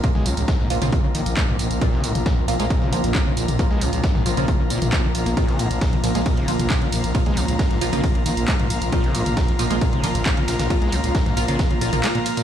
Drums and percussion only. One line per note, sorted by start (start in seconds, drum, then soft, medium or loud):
0.04 kick loud
0.04 closed hi-hat medium
0.04 tambourine soft
0.15 snare medium
0.15 mid tom loud
0.26 closed hi-hat medium
0.26 open hi-hat loud
0.26 tambourine medium
0.37 closed hi-hat medium
0.37 tambourine soft
0.48 kick loud
0.48 snare loud
0.48 closed hi-hat medium
0.48 tambourine soft
0.59 snare soft
0.70 closed hi-hat medium
0.70 open hi-hat loud
0.70 tambourine medium
0.82 closed hi-hat soft
0.82 closed hi-hat medium
0.82 mid tom medium
0.82 tambourine soft
0.92 kick loud
0.92 closed hi-hat medium
0.92 open hi-hat medium
0.92 tambourine soft
1.15 closed hi-hat medium
1.15 open hi-hat loud
1.15 tambourine medium
1.26 closed hi-hat medium
1.26 tambourine soft
1.37 kick loud
1.37 snare loud
1.37 clap loud
1.37 closed hi-hat medium
1.37 tambourine soft
1.48 mid tom loud
1.59 closed hi-hat medium
1.59 open hi-hat loud
1.59 tambourine medium
1.71 closed hi-hat medium
1.71 tambourine soft
1.81 kick loud
1.81 closed hi-hat loud
1.81 closed hi-hat medium
1.93 snare medium
2.04 closed hi-hat medium
2.04 open hi-hat loud
2.04 tambourine medium
2.15 closed hi-hat medium
2.15 mid tom medium
2.15 tambourine soft
2.26 kick loud
2.26 snare loud
2.26 closed hi-hat medium
2.26 tambourine soft
2.48 closed hi-hat medium
2.48 open hi-hat loud
2.48 tambourine medium
2.60 snare soft
2.60 closed hi-hat medium
2.60 tambourine soft
2.70 kick loud
2.70 closed hi-hat medium
2.70 tambourine soft
2.82 snare soft
2.82 mid tom medium
2.93 closed hi-hat medium
2.93 open hi-hat loud
2.93 tambourine medium
3.04 closed hi-hat medium
3.04 tambourine soft
3.15 kick loud
3.15 snare loud
3.15 clap loud
3.15 closed hi-hat medium
3.15 tambourine soft
3.37 closed hi-hat medium
3.37 open hi-hat loud
3.37 tambourine medium
3.48 closed hi-hat medium
3.48 mid tom loud
3.48 tambourine soft
3.59 kick loud
3.59 closed hi-hat medium
3.59 tambourine soft
3.71 snare soft
3.81 closed hi-hat medium
3.81 open hi-hat loud
3.81 tambourine medium
3.93 closed hi-hat medium
3.93 tambourine soft
4.04 kick loud
4.04 snare loud
4.04 closed hi-hat medium
4.04 tambourine soft
4.15 snare soft
4.15 mid tom loud
4.26 closed hi-hat medium
4.26 open hi-hat loud
4.26 tambourine medium
4.37 closed hi-hat medium
4.37 closed hi-hat soft
4.37 tambourine soft
4.48 kick loud
4.48 closed hi-hat medium
4.48 open hi-hat medium
4.48 tambourine soft
4.70 closed hi-hat medium
4.70 open hi-hat loud
4.70 tambourine medium
4.82 closed hi-hat medium
4.82 mid tom loud
4.82 tambourine soft
4.92 kick loud
4.92 snare loud
4.92 clap loud
4.92 closed hi-hat medium
4.92 tambourine soft
5.15 closed hi-hat medium
5.15 open hi-hat loud
5.15 tambourine medium
5.26 closed hi-hat medium
5.26 tambourine soft
5.37 kick loud
5.37 closed hi-hat medium
5.37 ride medium
5.37 tambourine soft
5.48 snare soft
5.48 ride medium
5.59 closed hi-hat medium
5.59 open hi-hat loud
5.59 ride medium
5.59 tambourine medium
5.71 closed hi-hat medium
5.71 ride medium
5.71 tambourine soft
5.81 kick loud
5.81 snare loud
5.81 closed hi-hat medium
5.81 ride medium
5.81 tambourine soft
5.93 mid tom loud
5.93 ride medium
6.04 closed hi-hat medium
6.04 open hi-hat loud
6.04 ride medium
6.04 tambourine medium
6.15 snare soft
6.15 closed hi-hat medium
6.15 ride medium
6.15 tambourine soft
6.26 kick loud
6.26 closed hi-hat medium
6.26 ride medium
6.26 tambourine soft
6.37 snare soft
6.37 ride medium
6.48 closed hi-hat medium
6.48 open hi-hat loud
6.48 ride medium
6.48 tambourine medium
6.59 closed hi-hat medium
6.59 mid tom medium
6.59 ride medium
6.59 tambourine soft
6.70 kick loud
6.70 snare loud
6.70 clap loud
6.70 closed hi-hat medium
6.70 ride medium
6.70 tambourine soft
6.82 ride medium
6.92 closed hi-hat medium
6.92 open hi-hat loud
6.92 ride medium
6.92 tambourine medium
7.04 closed hi-hat medium
7.04 ride medium
7.04 tambourine soft
7.15 kick loud
7.15 closed hi-hat medium
7.15 ride medium
7.15 tambourine soft
7.26 snare medium
7.26 mid tom loud
7.26 ride medium
7.37 closed hi-hat medium
7.37 open hi-hat loud
7.37 ride medium
7.37 tambourine medium
7.48 closed hi-hat medium
7.48 ride medium
7.48 tambourine soft
7.59 kick loud
7.59 snare loud
7.59 closed hi-hat medium
7.59 ride medium
7.59 tambourine soft
7.71 snare soft
7.71 ride medium
7.81 closed hi-hat medium
7.81 open hi-hat loud
7.81 ride medium
7.81 tambourine medium
7.93 closed hi-hat soft
7.93 closed hi-hat medium
7.93 mid tom medium
7.93 ride medium
7.93 tambourine soft
8.04 kick loud
8.04 closed hi-hat medium
8.04 open hi-hat medium
8.04 ride medium
8.04 tambourine soft
8.15 ride medium
8.26 closed hi-hat medium
8.26 open hi-hat loud
8.26 ride medium
8.26 tambourine medium
8.37 closed hi-hat medium
8.37 ride medium
8.37 tambourine soft
8.48 kick loud
8.48 snare loud
8.48 clap loud
8.48 closed hi-hat medium
8.48 ride medium
8.48 tambourine soft
8.59 mid tom loud
8.59 ride medium
8.70 closed hi-hat medium
8.70 open hi-hat loud
8.70 ride medium
8.70 tambourine medium
8.82 closed hi-hat medium
8.82 ride medium
8.82 tambourine soft
8.92 kick loud
8.92 closed hi-hat medium
8.92 ride medium
8.92 tambourine soft
9.04 snare medium
9.04 ride medium
9.15 closed hi-hat medium
9.15 open hi-hat loud
9.15 ride medium
9.15 tambourine medium
9.26 closed hi-hat medium
9.26 mid tom medium
9.26 ride medium
9.26 tambourine soft
9.37 kick loud
9.37 snare loud
9.37 closed hi-hat medium
9.37 ride medium
9.37 tambourine soft
9.48 ride medium
9.59 closed hi-hat medium
9.59 open hi-hat loud
9.59 ride medium
9.59 tambourine medium
9.71 snare soft
9.71 closed hi-hat medium
9.71 ride medium
9.71 tambourine soft
9.81 kick loud
9.81 closed hi-hat medium
9.81 ride medium
9.81 tambourine soft
9.93 mid tom medium
9.93 ride medium
10.03 closed hi-hat medium
10.03 open hi-hat loud
10.03 ride medium
10.03 tambourine medium
10.15 closed hi-hat medium
10.15 ride medium
10.15 tambourine soft
10.26 kick loud
10.26 snare loud
10.26 clap loud
10.26 closed hi-hat medium
10.26 ride medium
10.26 tambourine soft
10.37 ride medium
10.48 snare loud
10.48 closed hi-hat medium
10.48 open hi-hat loud
10.48 ride medium
10.48 tambourine medium
10.59 snare loud
10.59 closed hi-hat medium
10.59 mid tom medium
10.59 ride medium
10.59 tambourine soft
10.70 kick loud
10.70 closed hi-hat loud
10.70 closed hi-hat medium
10.70 ride medium
10.70 tambourine soft
10.82 snare medium
10.82 ride medium
10.92 closed hi-hat medium
10.92 open hi-hat loud
10.92 ride medium
10.92 tambourine medium
11.04 closed hi-hat medium
11.04 ride medium
11.04 tambourine soft
11.15 kick loud
11.15 snare loud
11.15 closed hi-hat medium
11.15 ride medium
11.15 tambourine soft
11.26 snare soft
11.26 mid tom medium
11.26 ride medium
11.37 closed hi-hat medium
11.37 open hi-hat loud
11.37 ride medium
11.37 tambourine medium
11.48 closed hi-hat soft
11.48 closed hi-hat medium
11.48 ride medium
11.48 tambourine soft
11.59 kick loud
11.59 snare loud
11.59 closed hi-hat medium
11.59 open hi-hat medium
11.59 ride medium
11.59 tambourine soft
11.71 ride medium
11.81 closed hi-hat medium
11.81 open hi-hat loud
11.81 ride medium
11.81 tambourine medium
11.93 closed hi-hat medium
11.93 mid tom medium
11.93 ride medium
11.93 tambourine soft
12.04 snare loud
12.04 clap loud
12.04 closed hi-hat loud
12.04 closed hi-hat medium
12.04 ride medium
12.04 tambourine soft
12.15 ride medium
12.26 closed hi-hat medium
12.26 open hi-hat loud
12.26 ride medium
12.26 tambourine medium
12.37 closed hi-hat medium
12.37 ride medium
12.37 tambourine soft